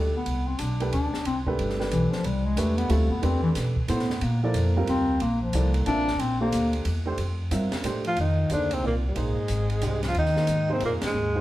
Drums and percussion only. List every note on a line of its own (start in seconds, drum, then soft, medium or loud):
0.26 ride medium
0.59 hi-hat pedal medium
0.59 ride medium
0.80 ride soft
0.93 ride medium
1.14 snare medium
1.25 ride medium
1.46 kick medium
1.59 ride medium
1.70 snare soft
1.81 snare soft
1.91 hi-hat pedal medium
1.91 ride medium
2.13 snare soft
2.24 ride medium
2.57 hi-hat pedal medium
2.57 ride medium
2.78 ride medium
2.90 ride medium
3.11 kick soft
3.23 ride medium
3.55 snare soft
3.55 hi-hat pedal medium
3.55 ride medium
3.77 kick medium
3.88 hi-hat pedal medium
3.88 ride medium
3.99 snare soft
4.10 snare soft
4.21 ride medium
4.54 hi-hat pedal medium
4.54 ride medium
4.87 ride medium
5.20 ride medium
5.53 hi-hat pedal medium
5.53 ride medium
5.74 ride medium
5.86 ride medium
6.08 snare soft
6.20 ride medium
6.52 hi-hat pedal medium
6.52 ride medium
6.73 ride medium
6.85 ride medium
7.18 ride medium
7.51 hi-hat pedal medium
7.51 ride medium
7.72 snare medium
7.72 ride medium
7.84 hi-hat pedal medium
7.84 ride medium
8.04 ride medium
8.17 ride medium
8.50 hi-hat pedal medium
8.50 ride medium
8.71 ride medium
9.16 ride medium
9.48 hi-hat pedal medium
9.48 ride medium
9.70 ride soft
9.82 hi-hat pedal medium
9.82 ride medium
10.03 snare soft
10.03 ride soft
10.15 ride medium
10.26 snare soft
10.36 snare soft
10.47 hi-hat pedal medium
10.47 ride medium
10.80 ride medium
11.02 snare medium
11.02 ride medium